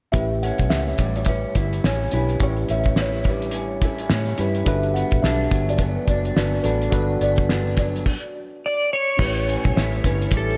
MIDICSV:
0, 0, Header, 1, 7, 480
1, 0, Start_track
1, 0, Tempo, 565504
1, 119, Time_signature, 4, 2, 24, 8
1, 8974, End_track
2, 0, Start_track
2, 0, Title_t, "Electric slide guitar"
2, 0, Program_c, 0, 29
2, 7349, Note_on_c, 0, 74, 97
2, 7577, Note_off_c, 0, 74, 0
2, 7581, Note_on_c, 0, 73, 94
2, 8736, Note_off_c, 0, 73, 0
2, 8802, Note_on_c, 0, 69, 77
2, 8974, Note_off_c, 0, 69, 0
2, 8974, End_track
3, 0, Start_track
3, 0, Title_t, "Kalimba"
3, 0, Program_c, 1, 108
3, 102, Note_on_c, 1, 76, 79
3, 105, Note_on_c, 1, 67, 67
3, 339, Note_off_c, 1, 76, 0
3, 340, Note_off_c, 1, 67, 0
3, 362, Note_on_c, 1, 78, 60
3, 365, Note_on_c, 1, 69, 51
3, 589, Note_off_c, 1, 78, 0
3, 590, Note_on_c, 1, 76, 71
3, 591, Note_off_c, 1, 69, 0
3, 597, Note_on_c, 1, 67, 60
3, 732, Note_off_c, 1, 76, 0
3, 735, Note_off_c, 1, 67, 0
3, 991, Note_on_c, 1, 73, 71
3, 1002, Note_on_c, 1, 64, 51
3, 1080, Note_off_c, 1, 73, 0
3, 1085, Note_off_c, 1, 64, 0
3, 1091, Note_on_c, 1, 71, 64
3, 1101, Note_on_c, 1, 64, 50
3, 1315, Note_off_c, 1, 71, 0
3, 1317, Note_on_c, 1, 73, 61
3, 1320, Note_off_c, 1, 64, 0
3, 1329, Note_on_c, 1, 64, 49
3, 1456, Note_off_c, 1, 73, 0
3, 1462, Note_off_c, 1, 64, 0
3, 1566, Note_on_c, 1, 73, 60
3, 1568, Note_on_c, 1, 64, 46
3, 1701, Note_off_c, 1, 73, 0
3, 1702, Note_off_c, 1, 64, 0
3, 1815, Note_on_c, 1, 71, 61
3, 1822, Note_on_c, 1, 62, 50
3, 1946, Note_off_c, 1, 71, 0
3, 1950, Note_off_c, 1, 62, 0
3, 2065, Note_on_c, 1, 73, 85
3, 2066, Note_on_c, 1, 64, 69
3, 2282, Note_off_c, 1, 73, 0
3, 2283, Note_off_c, 1, 64, 0
3, 2297, Note_on_c, 1, 76, 68
3, 2303, Note_on_c, 1, 67, 56
3, 2519, Note_off_c, 1, 76, 0
3, 2522, Note_off_c, 1, 67, 0
3, 2558, Note_on_c, 1, 73, 68
3, 2567, Note_on_c, 1, 64, 51
3, 2770, Note_off_c, 1, 73, 0
3, 2774, Note_off_c, 1, 64, 0
3, 2790, Note_on_c, 1, 71, 68
3, 2793, Note_on_c, 1, 62, 53
3, 2914, Note_off_c, 1, 71, 0
3, 2916, Note_off_c, 1, 62, 0
3, 3265, Note_on_c, 1, 69, 68
3, 3269, Note_on_c, 1, 61, 54
3, 3392, Note_off_c, 1, 69, 0
3, 3394, Note_off_c, 1, 61, 0
3, 3972, Note_on_c, 1, 76, 86
3, 3982, Note_on_c, 1, 67, 61
3, 4193, Note_on_c, 1, 78, 64
3, 4196, Note_off_c, 1, 76, 0
3, 4201, Note_on_c, 1, 69, 53
3, 4202, Note_off_c, 1, 67, 0
3, 4426, Note_off_c, 1, 78, 0
3, 4430, Note_off_c, 1, 69, 0
3, 4433, Note_on_c, 1, 76, 83
3, 4444, Note_on_c, 1, 67, 63
3, 4575, Note_off_c, 1, 76, 0
3, 4581, Note_off_c, 1, 67, 0
3, 4832, Note_on_c, 1, 74, 70
3, 4833, Note_on_c, 1, 66, 54
3, 4915, Note_on_c, 1, 71, 68
3, 4918, Note_on_c, 1, 62, 55
3, 4921, Note_off_c, 1, 74, 0
3, 4922, Note_off_c, 1, 66, 0
3, 5147, Note_off_c, 1, 71, 0
3, 5149, Note_off_c, 1, 62, 0
3, 5170, Note_on_c, 1, 74, 68
3, 5173, Note_on_c, 1, 66, 52
3, 5304, Note_off_c, 1, 74, 0
3, 5306, Note_off_c, 1, 66, 0
3, 5398, Note_on_c, 1, 74, 64
3, 5406, Note_on_c, 1, 66, 53
3, 5537, Note_off_c, 1, 74, 0
3, 5542, Note_off_c, 1, 66, 0
3, 5624, Note_on_c, 1, 71, 67
3, 5632, Note_on_c, 1, 62, 48
3, 5770, Note_off_c, 1, 71, 0
3, 5774, Note_off_c, 1, 62, 0
3, 5876, Note_on_c, 1, 74, 88
3, 5884, Note_on_c, 1, 66, 75
3, 6108, Note_off_c, 1, 74, 0
3, 6112, Note_off_c, 1, 66, 0
3, 6131, Note_on_c, 1, 74, 78
3, 6136, Note_on_c, 1, 66, 53
3, 6355, Note_off_c, 1, 74, 0
3, 6358, Note_off_c, 1, 66, 0
3, 6383, Note_on_c, 1, 71, 75
3, 6388, Note_on_c, 1, 62, 56
3, 6602, Note_off_c, 1, 71, 0
3, 6604, Note_off_c, 1, 62, 0
3, 6609, Note_on_c, 1, 74, 67
3, 6620, Note_on_c, 1, 66, 55
3, 6743, Note_off_c, 1, 74, 0
3, 6749, Note_off_c, 1, 66, 0
3, 7805, Note_on_c, 1, 64, 61
3, 7805, Note_on_c, 1, 73, 79
3, 8031, Note_off_c, 1, 64, 0
3, 8031, Note_off_c, 1, 73, 0
3, 8199, Note_on_c, 1, 61, 48
3, 8199, Note_on_c, 1, 69, 71
3, 8284, Note_off_c, 1, 61, 0
3, 8284, Note_off_c, 1, 69, 0
3, 8529, Note_on_c, 1, 71, 59
3, 8540, Note_on_c, 1, 62, 47
3, 8753, Note_off_c, 1, 71, 0
3, 8759, Note_off_c, 1, 62, 0
3, 8974, End_track
4, 0, Start_track
4, 0, Title_t, "Reed electric piano"
4, 0, Program_c, 2, 4
4, 106, Note_on_c, 2, 61, 73
4, 111, Note_on_c, 2, 64, 61
4, 122, Note_on_c, 2, 67, 67
4, 126, Note_on_c, 2, 71, 73
4, 292, Control_c, 2, 64, 127
4, 755, Note_off_c, 2, 61, 0
4, 758, Note_off_c, 2, 64, 0
4, 763, Note_off_c, 2, 67, 0
4, 765, Note_off_c, 2, 71, 0
4, 1795, Note_on_c, 2, 61, 67
4, 1809, Note_on_c, 2, 64, 69
4, 1814, Note_on_c, 2, 67, 64
4, 1821, Note_on_c, 2, 71, 83
4, 1971, Note_off_c, 2, 61, 0
4, 1978, Note_off_c, 2, 64, 0
4, 1980, Note_off_c, 2, 67, 0
4, 1984, Note_off_c, 2, 71, 0
4, 2037, Note_on_c, 2, 61, 70
4, 2044, Note_on_c, 2, 64, 68
4, 2052, Note_on_c, 2, 67, 69
4, 2061, Note_on_c, 2, 73, 82
4, 2682, Note_off_c, 2, 61, 0
4, 2685, Note_off_c, 2, 64, 0
4, 2689, Note_off_c, 2, 67, 0
4, 2694, Note_off_c, 2, 73, 0
4, 3714, Note_on_c, 2, 61, 76
4, 3722, Note_on_c, 2, 64, 62
4, 3729, Note_on_c, 2, 67, 66
4, 3737, Note_on_c, 2, 71, 76
4, 3891, Note_off_c, 2, 61, 0
4, 3895, Note_off_c, 2, 64, 0
4, 3899, Note_off_c, 2, 67, 0
4, 3903, Note_off_c, 2, 71, 0
4, 3948, Note_on_c, 2, 62, 75
4, 3957, Note_on_c, 2, 66, 71
4, 3964, Note_on_c, 2, 69, 73
4, 3971, Note_on_c, 2, 71, 89
4, 3976, Control_c, 2, 64, 0
4, 4106, Control_c, 2, 64, 127
4, 4597, Note_off_c, 2, 62, 0
4, 4602, Note_off_c, 2, 66, 0
4, 4605, Note_off_c, 2, 69, 0
4, 4609, Note_off_c, 2, 71, 0
4, 5635, Note_on_c, 2, 62, 69
4, 5640, Note_on_c, 2, 66, 69
4, 5645, Note_on_c, 2, 69, 69
4, 5654, Note_on_c, 2, 71, 79
4, 5812, Note_off_c, 2, 62, 0
4, 5814, Note_off_c, 2, 66, 0
4, 5817, Note_off_c, 2, 69, 0
4, 5821, Note_off_c, 2, 71, 0
4, 5859, Note_on_c, 2, 62, 81
4, 5870, Note_on_c, 2, 66, 71
4, 5875, Note_on_c, 2, 69, 67
4, 5884, Note_on_c, 2, 71, 81
4, 6512, Note_off_c, 2, 62, 0
4, 6518, Note_off_c, 2, 66, 0
4, 6520, Note_off_c, 2, 69, 0
4, 6525, Note_off_c, 2, 71, 0
4, 6852, Control_c, 2, 64, 0
4, 7786, Note_on_c, 2, 61, 67
4, 7796, Note_on_c, 2, 64, 63
4, 7801, Note_on_c, 2, 67, 62
4, 7807, Note_on_c, 2, 71, 76
4, 7970, Control_c, 2, 64, 127
4, 8434, Note_off_c, 2, 61, 0
4, 8439, Note_off_c, 2, 64, 0
4, 8442, Note_off_c, 2, 67, 0
4, 8445, Note_off_c, 2, 71, 0
4, 8974, End_track
5, 0, Start_track
5, 0, Title_t, "Clean electric guitar"
5, 0, Program_c, 3, 27
5, 124, Note_on_c, 3, 45, 68
5, 372, Note_on_c, 3, 61, 50
5, 610, Note_on_c, 3, 64, 54
5, 848, Note_on_c, 3, 55, 52
5, 1069, Note_off_c, 3, 61, 0
5, 1080, Note_on_c, 3, 61, 47
5, 1311, Note_off_c, 3, 64, 0
5, 1321, Note_on_c, 3, 64, 58
5, 1558, Note_off_c, 3, 61, 0
5, 1569, Note_on_c, 3, 61, 54
5, 1802, Note_off_c, 3, 64, 0
5, 1813, Note_on_c, 3, 64, 56
5, 2045, Note_off_c, 3, 45, 0
5, 2063, Note_on_c, 3, 45, 69
5, 2284, Note_off_c, 3, 61, 0
5, 2294, Note_on_c, 3, 61, 49
5, 2523, Note_off_c, 3, 64, 0
5, 2533, Note_on_c, 3, 64, 56
5, 2781, Note_off_c, 3, 55, 0
5, 2784, Note_on_c, 3, 55, 50
5, 2997, Note_off_c, 3, 61, 0
5, 3007, Note_on_c, 3, 61, 46
5, 3239, Note_off_c, 3, 64, 0
5, 3249, Note_on_c, 3, 64, 61
5, 3483, Note_off_c, 3, 61, 0
5, 3494, Note_on_c, 3, 61, 56
5, 3716, Note_off_c, 3, 64, 0
5, 3726, Note_on_c, 3, 64, 55
5, 3963, Note_off_c, 3, 45, 0
5, 3966, Note_on_c, 3, 43, 70
5, 4023, Note_off_c, 3, 64, 0
5, 4027, Note_off_c, 3, 61, 0
5, 4204, Note_on_c, 3, 59, 48
5, 4452, Note_on_c, 3, 62, 61
5, 4693, Note_off_c, 3, 55, 0
5, 4697, Note_on_c, 3, 54, 52
5, 4924, Note_off_c, 3, 59, 0
5, 4936, Note_on_c, 3, 59, 50
5, 5168, Note_off_c, 3, 62, 0
5, 5181, Note_on_c, 3, 62, 63
5, 5402, Note_off_c, 3, 59, 0
5, 5412, Note_on_c, 3, 59, 58
5, 5634, Note_off_c, 3, 62, 0
5, 5644, Note_on_c, 3, 62, 58
5, 5870, Note_off_c, 3, 43, 0
5, 5880, Note_on_c, 3, 43, 67
5, 6110, Note_off_c, 3, 59, 0
5, 6120, Note_on_c, 3, 59, 51
5, 6355, Note_off_c, 3, 62, 0
5, 6365, Note_on_c, 3, 62, 54
5, 6594, Note_off_c, 3, 54, 0
5, 6604, Note_on_c, 3, 54, 53
5, 6899, Note_off_c, 3, 43, 0
5, 6899, Note_off_c, 3, 59, 0
5, 6901, Note_off_c, 3, 54, 0
5, 6902, Note_off_c, 3, 62, 0
5, 7798, Note_on_c, 3, 45, 74
5, 8048, Note_on_c, 3, 61, 46
5, 8288, Note_on_c, 3, 64, 62
5, 8524, Note_off_c, 3, 61, 0
5, 8536, Note_on_c, 3, 61, 54
5, 8773, Note_on_c, 3, 55, 53
5, 8974, Note_off_c, 3, 45, 0
5, 8974, Note_off_c, 3, 55, 0
5, 8974, Note_off_c, 3, 61, 0
5, 8974, Note_off_c, 3, 64, 0
5, 8974, End_track
6, 0, Start_track
6, 0, Title_t, "Fingered electric bass"
6, 0, Program_c, 4, 33
6, 117, Note_on_c, 4, 33, 95
6, 426, Note_off_c, 4, 33, 0
6, 504, Note_on_c, 4, 35, 69
6, 599, Note_off_c, 4, 35, 0
6, 599, Note_on_c, 4, 37, 75
6, 792, Note_off_c, 4, 37, 0
6, 835, Note_on_c, 4, 33, 75
6, 1222, Note_off_c, 4, 33, 0
6, 1320, Note_on_c, 4, 31, 78
6, 1513, Note_off_c, 4, 31, 0
6, 1563, Note_on_c, 4, 33, 84
6, 1755, Note_off_c, 4, 33, 0
6, 1810, Note_on_c, 4, 35, 74
6, 1999, Note_off_c, 4, 35, 0
6, 2043, Note_on_c, 4, 33, 98
6, 2235, Note_off_c, 4, 33, 0
6, 2288, Note_on_c, 4, 33, 82
6, 3452, Note_off_c, 4, 33, 0
6, 3484, Note_on_c, 4, 45, 98
6, 3676, Note_off_c, 4, 45, 0
6, 3725, Note_on_c, 4, 43, 71
6, 3917, Note_off_c, 4, 43, 0
6, 3956, Note_on_c, 4, 31, 89
6, 4266, Note_off_c, 4, 31, 0
6, 4349, Note_on_c, 4, 33, 70
6, 4426, Note_off_c, 4, 33, 0
6, 4440, Note_on_c, 4, 35, 78
6, 4634, Note_off_c, 4, 35, 0
6, 4681, Note_on_c, 4, 31, 82
6, 5066, Note_off_c, 4, 31, 0
6, 5159, Note_on_c, 4, 30, 82
6, 5353, Note_off_c, 4, 30, 0
6, 5397, Note_on_c, 4, 31, 78
6, 5592, Note_off_c, 4, 31, 0
6, 5640, Note_on_c, 4, 33, 84
6, 5834, Note_off_c, 4, 33, 0
6, 5876, Note_on_c, 4, 31, 101
6, 6071, Note_off_c, 4, 31, 0
6, 6119, Note_on_c, 4, 31, 84
6, 6807, Note_off_c, 4, 31, 0
6, 7802, Note_on_c, 4, 33, 106
6, 8109, Note_off_c, 4, 33, 0
6, 8193, Note_on_c, 4, 35, 79
6, 8266, Note_off_c, 4, 35, 0
6, 8286, Note_on_c, 4, 33, 83
6, 8476, Note_off_c, 4, 33, 0
6, 8520, Note_on_c, 4, 31, 78
6, 8712, Note_off_c, 4, 31, 0
6, 8756, Note_on_c, 4, 33, 73
6, 8949, Note_off_c, 4, 33, 0
6, 8974, End_track
7, 0, Start_track
7, 0, Title_t, "Drums"
7, 114, Note_on_c, 9, 42, 63
7, 117, Note_on_c, 9, 36, 95
7, 199, Note_off_c, 9, 42, 0
7, 202, Note_off_c, 9, 36, 0
7, 364, Note_on_c, 9, 42, 58
7, 449, Note_off_c, 9, 42, 0
7, 495, Note_on_c, 9, 42, 41
7, 505, Note_on_c, 9, 36, 72
7, 580, Note_off_c, 9, 42, 0
7, 590, Note_off_c, 9, 36, 0
7, 597, Note_on_c, 9, 38, 84
7, 682, Note_off_c, 9, 38, 0
7, 832, Note_on_c, 9, 42, 64
7, 838, Note_on_c, 9, 36, 76
7, 917, Note_off_c, 9, 42, 0
7, 923, Note_off_c, 9, 36, 0
7, 982, Note_on_c, 9, 42, 44
7, 1059, Note_off_c, 9, 42, 0
7, 1059, Note_on_c, 9, 42, 70
7, 1071, Note_on_c, 9, 36, 71
7, 1144, Note_off_c, 9, 42, 0
7, 1156, Note_off_c, 9, 36, 0
7, 1316, Note_on_c, 9, 42, 66
7, 1320, Note_on_c, 9, 36, 73
7, 1401, Note_off_c, 9, 42, 0
7, 1404, Note_off_c, 9, 36, 0
7, 1467, Note_on_c, 9, 42, 48
7, 1552, Note_off_c, 9, 42, 0
7, 1564, Note_on_c, 9, 38, 90
7, 1649, Note_off_c, 9, 38, 0
7, 1794, Note_on_c, 9, 42, 68
7, 1878, Note_off_c, 9, 42, 0
7, 1943, Note_on_c, 9, 42, 41
7, 2028, Note_off_c, 9, 42, 0
7, 2034, Note_on_c, 9, 42, 64
7, 2040, Note_on_c, 9, 36, 90
7, 2119, Note_off_c, 9, 42, 0
7, 2125, Note_off_c, 9, 36, 0
7, 2178, Note_on_c, 9, 42, 27
7, 2263, Note_off_c, 9, 42, 0
7, 2280, Note_on_c, 9, 42, 64
7, 2365, Note_off_c, 9, 42, 0
7, 2408, Note_on_c, 9, 42, 43
7, 2425, Note_on_c, 9, 36, 78
7, 2493, Note_off_c, 9, 42, 0
7, 2510, Note_off_c, 9, 36, 0
7, 2514, Note_on_c, 9, 38, 81
7, 2599, Note_off_c, 9, 38, 0
7, 2751, Note_on_c, 9, 42, 60
7, 2759, Note_on_c, 9, 36, 72
7, 2836, Note_off_c, 9, 42, 0
7, 2844, Note_off_c, 9, 36, 0
7, 2904, Note_on_c, 9, 42, 42
7, 2982, Note_off_c, 9, 42, 0
7, 2982, Note_on_c, 9, 42, 72
7, 3067, Note_off_c, 9, 42, 0
7, 3238, Note_on_c, 9, 42, 65
7, 3240, Note_on_c, 9, 36, 74
7, 3323, Note_off_c, 9, 42, 0
7, 3325, Note_off_c, 9, 36, 0
7, 3382, Note_on_c, 9, 42, 48
7, 3467, Note_off_c, 9, 42, 0
7, 3476, Note_on_c, 9, 38, 95
7, 3561, Note_off_c, 9, 38, 0
7, 3610, Note_on_c, 9, 42, 32
7, 3695, Note_off_c, 9, 42, 0
7, 3715, Note_on_c, 9, 42, 72
7, 3800, Note_off_c, 9, 42, 0
7, 3860, Note_on_c, 9, 42, 40
7, 3945, Note_off_c, 9, 42, 0
7, 3955, Note_on_c, 9, 42, 70
7, 3959, Note_on_c, 9, 36, 84
7, 4040, Note_off_c, 9, 42, 0
7, 4044, Note_off_c, 9, 36, 0
7, 4101, Note_on_c, 9, 42, 31
7, 4186, Note_off_c, 9, 42, 0
7, 4211, Note_on_c, 9, 42, 61
7, 4296, Note_off_c, 9, 42, 0
7, 4337, Note_on_c, 9, 42, 42
7, 4346, Note_on_c, 9, 36, 75
7, 4422, Note_off_c, 9, 42, 0
7, 4431, Note_off_c, 9, 36, 0
7, 4447, Note_on_c, 9, 38, 75
7, 4532, Note_off_c, 9, 38, 0
7, 4678, Note_on_c, 9, 42, 62
7, 4681, Note_on_c, 9, 36, 77
7, 4763, Note_off_c, 9, 42, 0
7, 4766, Note_off_c, 9, 36, 0
7, 4830, Note_on_c, 9, 42, 47
7, 4907, Note_off_c, 9, 42, 0
7, 4907, Note_on_c, 9, 42, 70
7, 4912, Note_on_c, 9, 36, 66
7, 4992, Note_off_c, 9, 42, 0
7, 4997, Note_off_c, 9, 36, 0
7, 5156, Note_on_c, 9, 42, 67
7, 5158, Note_on_c, 9, 36, 83
7, 5241, Note_off_c, 9, 42, 0
7, 5243, Note_off_c, 9, 36, 0
7, 5305, Note_on_c, 9, 42, 43
7, 5390, Note_off_c, 9, 42, 0
7, 5404, Note_on_c, 9, 38, 96
7, 5488, Note_off_c, 9, 38, 0
7, 5635, Note_on_c, 9, 42, 72
7, 5719, Note_off_c, 9, 42, 0
7, 5786, Note_on_c, 9, 42, 44
7, 5870, Note_off_c, 9, 42, 0
7, 5874, Note_on_c, 9, 42, 67
7, 5877, Note_on_c, 9, 36, 84
7, 5959, Note_off_c, 9, 42, 0
7, 5962, Note_off_c, 9, 36, 0
7, 6121, Note_on_c, 9, 42, 62
7, 6205, Note_off_c, 9, 42, 0
7, 6248, Note_on_c, 9, 42, 45
7, 6264, Note_on_c, 9, 36, 75
7, 6333, Note_off_c, 9, 42, 0
7, 6349, Note_off_c, 9, 36, 0
7, 6361, Note_on_c, 9, 38, 76
7, 6446, Note_off_c, 9, 38, 0
7, 6593, Note_on_c, 9, 42, 68
7, 6594, Note_on_c, 9, 38, 31
7, 6599, Note_on_c, 9, 36, 79
7, 6678, Note_off_c, 9, 42, 0
7, 6679, Note_off_c, 9, 38, 0
7, 6684, Note_off_c, 9, 36, 0
7, 6755, Note_on_c, 9, 42, 47
7, 6840, Note_off_c, 9, 42, 0
7, 6841, Note_on_c, 9, 36, 88
7, 6843, Note_on_c, 9, 49, 70
7, 6926, Note_off_c, 9, 36, 0
7, 6927, Note_off_c, 9, 49, 0
7, 7798, Note_on_c, 9, 49, 82
7, 7802, Note_on_c, 9, 36, 92
7, 7882, Note_off_c, 9, 49, 0
7, 7886, Note_off_c, 9, 36, 0
7, 7947, Note_on_c, 9, 42, 31
7, 8032, Note_off_c, 9, 42, 0
7, 8057, Note_on_c, 9, 42, 67
7, 8141, Note_off_c, 9, 42, 0
7, 8183, Note_on_c, 9, 42, 46
7, 8192, Note_on_c, 9, 36, 83
7, 8268, Note_off_c, 9, 42, 0
7, 8277, Note_off_c, 9, 36, 0
7, 8295, Note_on_c, 9, 38, 88
7, 8380, Note_off_c, 9, 38, 0
7, 8426, Note_on_c, 9, 42, 29
7, 8510, Note_off_c, 9, 42, 0
7, 8524, Note_on_c, 9, 36, 75
7, 8525, Note_on_c, 9, 42, 67
7, 8609, Note_off_c, 9, 36, 0
7, 8610, Note_off_c, 9, 42, 0
7, 8671, Note_on_c, 9, 42, 48
7, 8749, Note_off_c, 9, 42, 0
7, 8749, Note_on_c, 9, 42, 76
7, 8756, Note_on_c, 9, 36, 73
7, 8834, Note_off_c, 9, 42, 0
7, 8841, Note_off_c, 9, 36, 0
7, 8911, Note_on_c, 9, 42, 31
7, 8974, Note_off_c, 9, 42, 0
7, 8974, End_track
0, 0, End_of_file